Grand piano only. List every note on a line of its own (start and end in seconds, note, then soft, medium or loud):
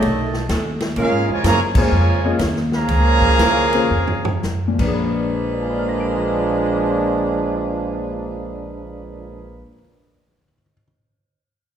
1.77 1.91 A#3 medium
1.77 1.91 C#4 medium
1.77 1.91 F4 medium
1.77 1.91 G#4 medium
1.77 1.92 C5 medium
2.25 2.39 A#3 medium
2.25 2.39 C#4 medium
2.25 2.39 F4 medium
2.25 2.40 G#4 medium
2.25 2.40 D#5 medium
3.74 3.90 A#3 medium
3.74 3.90 C#4 medium
3.74 3.90 F4 medium
3.74 3.90 G#4 medium
3.74 3.90 C5 medium
4.68 9.55 A#2 medium
4.74 9.61 F3 medium
4.80 9.68 D4 medium
4.87 9.74 G#4 medium
4.93 9.80 B4 medium
5.54 10.37 D5 soft
5.62 10.45 G#5 soft
5.70 10.53 B5 soft
5.79 10.62 F6 soft
5.89 10.72 A#6 soft
6.00 10.83 D7 soft